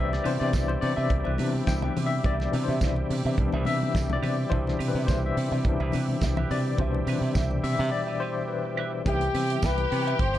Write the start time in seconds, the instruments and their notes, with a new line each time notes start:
Already playing: fingered electric bass C2, tonewheel organ B2 G3 E4 G4, tine electric piano E3 B3 D4 B4 C5 D5 E5, clean electric guitar G4 B4
0.10 tine electric piano D5, muted clean electric guitar stroke, snare, muted conga
0.24 fingered electric bass C3, tine electric piano E3 B3 D4 C5, clean electric guitar G4 B4 E5, open hi-hat
0.39 fingered electric bass C3, clean electric guitar G4 B4 E5, tine electric piano D5
0.52 fingered electric bass C2, clean electric guitar G4 B4 E5, kick, snare, closed hi-hat, tambourine
0.68 tine electric piano C5, muted clean electric guitar stroke, muted conga
0.81 fingered electric bass C3, tine electric piano D5, muted clean electric guitar stroke, open hi-hat
0.96 fingered electric bass C3, clean electric guitar G4 B4 E5, tine electric piano E5
1.10 fingered electric bass C2, kick, closed hi-hat, muted conga
1.24 fingered electric bass C2, clean electric guitar G4 B4 E5, muted conga
1.38 fingered electric bass C3, tine electric piano E3 B3 D4, clean electric guitar G4 B4 E5, open hi-hat, high conga
1.54 muted clean electric guitar stroke, high conga
1.67 fingered electric bass C2, tine electric piano G5, muted clean electric guitar stroke, kick, snare, closed hi-hat, tambourine, muted conga, high conga
1.82 clean electric guitar G4 B4 E5, muted conga, high conga, low conga
1.96 fingered electric bass C3, clean electric guitar G4 B4 E5, open hi-hat, low conga
2.06 tine electric piano E5
2.24 fingered electric bass C2, clean electric guitar G4 B4 E5, tine electric piano D5, kick, closed hi-hat, muted conga
2.40 muted clean electric guitar stroke, snare, muted conga
2.51 tine electric piano B2 E3 D4, fingered electric bass C3, clean electric guitar G4 B4, open hi-hat
2.56 clean electric guitar E5
2.64 tine electric piano C5
2.68 fingered electric bass C3, clean electric guitar G4 B4 E5
2.81 fingered electric bass C2, clean electric guitar G4 B4 E5, kick, snare, closed hi-hat, tambourine, muted conga
2.96 muted clean electric guitar stroke, muted conga
3.10 fingered electric bass C3, muted clean electric guitar stroke, open hi-hat
3.25 fingered electric bass C3, clean electric guitar G4 B4 E5
3.37 fingered electric bass C2, tine electric piano E3 B3 D4, kick, closed hi-hat, muted conga
3.52 fingered electric bass C2, clean electric guitar G4 B4 E5, muted conga
3.65 fingered electric bass C3, clean electric guitar G4 B4 E5, tine electric piano E5, open hi-hat, high conga
3.82 muted clean electric guitar stroke, high conga
3.95 fingered electric bass C2, kick, snare, closed hi-hat, tambourine, muted conga, high conga
4.10 tine electric piano D5, muted clean electric guitar stroke, muted conga, high conga, low conga
4.22 fingered electric bass C3, clean electric guitar G4 B4 E5, open hi-hat, low conga
4.37 muted clean electric guitar stroke
4.50 fingered electric bass C2, tine electric piano B2 E3 D4 C5, clean electric guitar G4 B4 E5, kick, closed hi-hat, muted conga
4.66 muted clean electric guitar stroke, snare, muted conga
4.79 fingered electric bass C3, clean electric guitar G4 B4 E5, open hi-hat
4.88 tine electric piano B4
4.95 fingered electric bass C3, clean electric guitar G4 B4 E5
5.07 fingered electric bass C2, clean electric guitar G4 B4 E5, tine electric piano C5, kick, snare, closed hi-hat, tambourine
5.24 tine electric piano E5, muted clean electric guitar stroke
5.37 fingered electric bass C3, muted clean electric guitar stroke, open hi-hat
5.52 fingered electric bass C3, clean electric guitar G4 B4 E5
5.64 fingered electric bass C2, tine electric piano E3 B3 D4, muted clean electric guitar stroke, kick, closed hi-hat, muted conga
5.80 fingered electric bass C2, clean electric guitar G4 B4 E5, muted conga
5.92 fingered electric bass C3, clean electric guitar G4 B4 E5, open hi-hat, high conga
6.09 muted clean electric guitar stroke, high conga
6.21 fingered electric bass C2, muted clean electric guitar stroke, kick, snare, closed hi-hat, tambourine, muted conga, high conga
6.37 clean electric guitar G4 B4 E5, muted conga, high conga, low conga
6.51 fingered electric bass C3, clean electric guitar G4 B4 E5, tine electric piano D5, open hi-hat, low conga
6.67 muted clean electric guitar stroke
6.78 fingered electric bass C2, tine electric piano B2 E3 D4 C5, clean electric guitar G4 B4 E5, kick, closed hi-hat, low conga
6.95 muted clean electric guitar stroke, muted conga
7.07 fingered electric bass C3, clean electric guitar G4 B4 E5, open hi-hat
7.21 fingered electric bass C3, clean electric guitar G4 B4 E5
7.35 fingered electric bass C2, clean electric guitar G4 B4 E5, kick, snare, tambourine
7.51 muted clean electric guitar stroke, muted conga
7.64 fingered electric bass C3, tine electric piano E5, muted clean electric guitar stroke, open hi-hat
7.79 fingered electric bass C3, clean electric guitar G4 B4 E5
7.92 tine electric piano D5
8.07 clean electric guitar G4 B4 E5
8.20 clean electric guitar G4 B4 E5, tine electric piano C5
8.38 muted clean electric guitar stroke
8.48 tine electric piano B4
8.65 muted clean electric guitar stroke
8.77 clean electric guitar G4 B4 E5
8.93 muted clean electric guitar stroke
9.05 fingered electric bass C2, tine electric piano C3 E3 G3 B3 D#4, string section G4 G5, clean electric guitar G4 B4, flugelhorn G4, kick, closed hi-hat, low conga
9.09 tine electric piano E4, clean electric guitar E5
9.21 muted clean electric guitar stroke, closed hi-hat
9.34 fingered electric bass C3, clean electric guitar G4 B4 E5, open hi-hat
9.50 clean electric guitar G4 B4 E5, closed hi-hat
9.62 fingered electric bass C2, clean electric guitar G4 B4 E5, flugelhorn B4, kick, snare, closed hi-hat, tambourine
9.78 muted clean electric guitar stroke, closed hi-hat, muted conga
9.92 fingered electric bass C3, muted clean electric guitar stroke, open hi-hat
10.07 clean electric guitar G4 B4 E5, closed hi-hat
10.19 fingered electric bass G1, flugelhorn C5, kick, closed hi-hat
10.34 muted clean electric guitar stroke, closed hi-hat, muted conga